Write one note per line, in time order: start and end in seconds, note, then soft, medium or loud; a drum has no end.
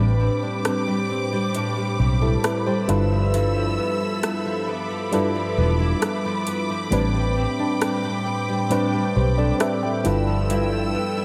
0.00 0.28 A1 medium
0.00 1.02 A2 medium
0.00 1.53 A2 medium
0.00 0.87 G3 medium
0.00 1.03 G3 medium
0.00 1.03 C4 medium
0.00 2.86 C4 medium
0.00 0.42 D4 medium
0.00 1.03 D4 medium
0.00 2.86 G4 medium
0.00 1.04 B4 medium
0.00 11.25 B5 medium
0.00 2.86 D6 medium
0.20 0.64 C4 medium
0.43 1.55 D4 medium
0.65 1.09 C4 medium
0.65 cross-stick medium
0.65 closed hi-hat medium
0.87 1.32 G3 medium
1.10 1.98 C4 medium
1.32 1.77 G3 medium
1.55 2.89 A2 medium
1.55 2.21 D4 medium
1.55 closed hi-hat medium
1.77 2.66 G3 medium
2.00 2.35 B1 medium
2.00 2.43 C4 medium
2.22 3.34 D4 medium
2.22 2.43 E4 medium
2.22 2.43 A4 medium
2.44 2.98 C4 medium
2.44 2.66 E4 medium
2.44 2.65 B4 medium
2.44 cross-stick loud
2.44 closed hi-hat medium
2.66 3.11 G3 medium
2.66 3.09 G4 medium
2.66 3.09 C5 medium
2.88 3.77 G1 medium
2.88 3.33 G2 medium
2.88 4.32 G3 medium
2.88 4.32 D4 medium
2.88 4.32 E4 medium
2.88 4.32 F4 medium
2.88 6.88 A4 medium
2.88 4.32 A4 medium
2.88 4.33 B4 loud
2.88 6.88 E5 medium
2.88 4.66 E6 medium
2.88 closed hi-hat medium
3.11 3.55 F3 medium
3.34 5.12 G2 medium
3.34 4.00 E4 medium
3.34 closed hi-hat medium
3.56 4.44 F3 medium
3.78 4.23 B3 medium
4.01 5.13 E4 medium
4.23 4.68 B3 medium
4.23 cross-stick loud
4.23 closed hi-hat medium
4.46 4.89 F3 medium
4.68 5.57 B3 medium
4.68 10.01 D6 medium
4.91 5.34 F3 medium
5.12 6.91 G2 medium
5.12 6.40 G3 medium
5.12 6.40 D4 medium
5.12 6.40 E4 medium
5.12 5.80 E4 medium
5.12 6.40 F4 medium
5.12 6.41 A4 medium
5.12 6.41 B4 medium
5.12 closed hi-hat medium
5.35 6.24 F3 medium
5.58 5.93 E1 medium
5.58 6.02 B3 medium
5.80 6.92 E4 medium
6.02 6.47 B3 medium
6.02 cross-stick loud
6.02 closed hi-hat medium
6.25 6.68 F3 medium
6.47 7.36 B3 medium
6.47 closed hi-hat medium
6.70 7.01 F3 medium
6.91 7.45 A1 loud
6.91 8.19 A2 medium
6.91 8.70 A2 medium
6.91 8.19 G3 medium
6.91 8.19 C4 medium
6.91 10.02 C4 medium
6.91 8.20 D4 medium
6.91 7.59 D4 medium
6.91 8.20 B4 medium
6.91 10.02 G5 medium
6.91 closed hi-hat medium
7.14 8.03 G3 medium
7.37 7.80 C4 medium
7.59 8.71 D4 medium
7.81 8.25 C4 medium
7.81 cross-stick loud
7.81 closed hi-hat medium
8.04 8.48 G3 medium
8.26 9.15 C4 medium
8.49 8.93 G3 medium
8.70 9.98 A2 medium
8.70 10.05 A2 medium
8.70 9.98 G3 medium
8.70 9.98 C4 medium
8.70 9.99 D4 medium
8.70 9.38 D4 medium
8.70 9.16 B4 medium
8.70 closed hi-hat medium
8.93 9.82 G3 medium
9.16 9.51 B1 medium
9.16 9.59 C4 medium
9.16 9.37 G4 soft
9.16 9.37 C5 medium
9.38 10.50 D4 medium
9.38 9.60 A4 medium
9.38 9.59 D5 medium
9.60 10.14 C4 medium
9.60 9.82 B4 medium
9.60 9.82 E5 medium
9.60 cross-stick loud
9.60 closed hi-hat medium
9.83 10.27 G3 medium
9.83 10.26 D5 medium
9.83 10.25 G5 medium
10.04 10.94 G1 medium
10.04 10.49 G2 medium
10.04 11.25 G3 medium
10.04 11.25 D4 medium
10.04 11.25 E4 medium
10.04 11.25 F4 medium
10.04 11.25 A4 medium
10.04 11.25 B4 medium
10.04 11.25 G5 medium
10.04 11.25 E6 medium
10.04 closed hi-hat medium
10.27 10.71 F3 medium
10.50 11.25 G2 medium
10.50 11.17 E4 medium
10.50 closed hi-hat medium
10.72 11.25 F3 medium
10.95 11.25 B3 medium
11.17 11.25 E4 medium